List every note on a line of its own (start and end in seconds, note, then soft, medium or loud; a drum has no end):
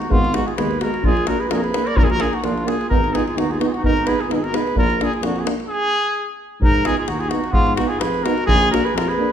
0.00 0.15 D#4 medium
0.00 0.12 F#4 medium
0.00 davul high soft
0.09 0.35 G#1 loud
0.09 0.19 G#3 medium
0.09 0.19 B3 medium
0.09 0.32 B3 medium
0.09 0.34 F4 loud
0.09 davul low medium
0.24 davul high soft
0.33 0.44 G#3 medium
0.33 0.43 B3 medium
0.33 0.48 D#4 medium
0.33 0.48 F#4 loud
0.33 davul high medium
0.46 0.56 F4 medium
0.46 0.56 G#4 medium
0.46 davul high soft
0.56 0.83 D#2 loud
0.56 0.67 G#3 medium
0.56 0.67 B3 medium
0.56 0.78 G#4 medium
0.56 0.79 B4 medium
0.56 davul high medium
0.71 davul high soft
0.80 0.92 G#3 medium
0.80 0.90 B3 medium
0.80 1.02 F#4 medium
0.80 1.03 A#4 medium
0.80 davul high medium
0.94 davul high soft
1.03 1.30 A#1 loud
1.03 1.13 A#3 medium
1.03 1.13 D4 medium
1.03 1.28 F4 loud
1.03 1.29 G#4 loud
1.03 davul low medium
1.17 davul high soft
1.27 1.37 A#3 medium
1.27 1.36 D4 medium
1.27 1.41 F#4 medium
1.27 1.41 A#4 loud
1.27 davul high medium
1.40 1.50 G#4 medium
1.40 1.52 B4 medium
1.40 davul high soft
1.49 1.76 F2 medium
1.49 1.60 A#3 medium
1.49 1.59 D4 medium
1.49 1.56 F4 medium
1.49 1.59 G#4 medium
1.49 1.54 A#4 medium
1.49 davul high medium
1.55 1.61 F#4 medium
1.55 1.62 A#4 medium
1.62 1.87 G#4 medium
1.62 1.89 B4 loud
1.62 davul high soft
1.73 1.82 A#3 medium
1.73 1.83 D4 medium
1.73 davul high medium
1.85 1.98 A#4 medium
1.85 1.98 D5 loud
1.85 davul high soft
1.97 2.22 A#1 loud
1.97 2.07 A#3 medium
1.97 2.06 D4 medium
1.97 2.02 F4 medium
1.97 2.05 A#4 loud
1.97 davul low loud
2.02 2.12 F4 medium
2.02 2.12 G#4 medium
2.10 2.22 F#4 medium
2.10 2.22 A#4 loud
2.10 davul high soft
2.19 2.28 A#3 medium
2.19 2.29 D4 medium
2.19 2.33 F4 medium
2.19 2.36 G#4 medium
2.19 davul high medium
2.31 2.45 D#4 medium
2.31 2.46 F#4 medium
2.31 davul high soft
2.43 2.69 A#1 medium
2.43 2.52 A#3 medium
2.43 2.66 D4 medium
2.43 2.53 D4 medium
2.43 2.69 F4 medium
2.43 davul high medium
2.58 davul high soft
2.65 2.75 A#3 medium
2.65 2.76 D4 medium
2.65 2.89 F4 medium
2.65 2.88 G#4 medium
2.65 davul high medium
2.81 davul high soft
2.89 3.15 G#1 loud
2.89 2.98 B3 medium
2.89 3.18 D#4 medium
2.89 2.99 D#4 medium
2.89 3.15 A#4 loud
2.89 davul low medium
3.04 davul high soft
3.13 3.22 B3 medium
3.13 3.23 D#4 medium
3.13 3.27 F4 medium
3.13 3.25 G#4 medium
3.13 davul high medium
3.26 3.40 F4 medium
3.26 3.39 G#4 medium
3.26 davul high soft
3.36 3.62 D#2 medium
3.36 3.46 B3 medium
3.36 3.45 D#4 medium
3.36 3.52 D#4 medium
3.36 3.51 F#4 medium
3.36 davul high medium
3.50 3.60 F4 medium
3.50 3.60 G#4 medium
3.50 davul high soft
3.59 3.69 B3 medium
3.59 3.69 D#4 medium
3.59 3.68 F#4 medium
3.59 davul high medium
3.66 3.78 F4 medium
3.66 3.74 G#4 medium
3.72 3.85 D#4 medium
3.72 3.83 F#4 medium
3.72 davul high soft
3.82 4.08 G#1 medium
3.82 3.92 B3 medium
3.82 3.93 D#4 medium
3.82 4.09 D#4 medium
3.82 4.07 A#4 loud
3.82 davul low medium
3.97 davul high soft
4.06 4.15 B3 medium
4.06 4.16 D#4 medium
4.06 4.24 G#4 medium
4.06 4.22 B4 loud
4.06 davul high medium
4.20 4.33 F4 medium
4.20 4.32 G#4 medium
4.20 davul high soft
4.28 4.55 G#1 medium
4.28 4.37 B3 medium
4.28 4.40 D#4 medium
4.28 4.37 A#4 medium
4.28 davul high medium
4.32 4.38 D#4 medium
4.32 4.45 G#4 medium
4.37 4.45 F4 medium
4.43 4.57 F#4 medium
4.43 4.57 A#4 medium
4.43 davul high soft
4.52 4.61 B3 medium
4.52 4.63 D#4 medium
4.52 4.77 B4 medium
4.52 davul high medium
4.56 4.77 G#4 medium
4.67 davul high soft
4.75 5.01 A#1 loud
4.75 4.84 A#3 medium
4.75 4.85 D4 medium
4.75 5.00 F4 medium
4.75 5.05 A#4 loud
4.75 davul low medium
4.90 davul high soft
4.98 5.07 A#3 medium
4.98 5.09 D4 medium
4.98 5.12 F4 medium
4.98 davul high medium
5.03 5.14 G#4 medium
5.13 5.26 F4 medium
5.13 5.26 G#4 medium
5.13 davul high soft
5.21 5.47 F2 loud
5.21 5.31 A#3 medium
5.21 5.33 D4 medium
5.21 5.38 D4 medium
5.21 5.41 F#4 medium
5.21 davul high medium
5.36 5.46 F4 medium
5.36 5.48 G#4 medium
5.36 davul high soft
5.44 5.53 A#3 medium
5.44 5.54 D4 medium
5.44 davul high medium
5.60 davul high soft
5.68 6.34 G#4 loud
6.61 6.87 G#2 loud
6.61 6.88 D#4 medium
6.61 6.87 A#4 loud
6.61 davul low loud
6.75 davul high soft
6.85 6.95 B3 medium
6.85 6.94 D#4 medium
6.85 6.98 F4 medium
6.85 6.98 G#4 loud
6.85 davul high medium
6.97 7.11 F4 medium
6.97 7.09 G#4 medium
6.97 davul high soft
7.07 7.33 D#2 medium
7.07 7.21 D#4 medium
7.07 7.21 F#4 medium
7.07 davul high medium
7.19 7.30 F4 medium
7.19 7.30 G#4 medium
7.19 davul high soft
7.28 7.41 B3 medium
7.28 7.50 D#4 medium
7.28 7.40 D#4 medium
7.28 7.52 F#4 medium
7.28 davul high medium
7.44 davul high soft
7.51 7.80 G#2 loud
7.51 7.74 B3 loud
7.51 7.75 F4 loud
7.51 davul low medium
7.67 davul high soft
7.75 7.87 B3 medium
7.75 7.90 D#4 medium
7.75 7.87 D#4 medium
7.75 7.89 F#4 medium
7.75 davul high medium
7.88 8.03 F4 medium
7.88 8.01 G#4 medium
7.88 davul high soft
7.99 8.26 F2 medium
7.99 8.27 G#4 medium
7.99 8.24 B4 loud
7.99 davul high medium
8.14 davul high soft
8.23 8.33 B3 medium
8.23 8.35 D#4 medium
8.23 8.48 F#4 medium
8.23 8.45 A#4 medium
8.23 davul high medium
8.38 davul high soft
8.46 8.73 A#1 loud
8.46 8.70 F4 medium
8.46 8.69 G#4 loud
8.46 davul low medium
8.62 davul high soft
8.71 8.81 A#3 medium
8.71 8.81 D4 medium
8.71 8.87 F#4 medium
8.71 8.86 A#4 loud
8.71 davul high medium
8.84 8.97 G#4 medium
8.84 8.97 B4 medium
8.84 davul high soft
8.94 9.20 F2 loud
8.94 9.09 F4 medium
8.94 9.10 A#4 loud
8.94 davul high medium
9.08 9.32 G#4 medium
9.08 9.32 B4 medium
9.08 davul high soft
9.17 9.27 A#3 medium
9.17 9.28 D4 medium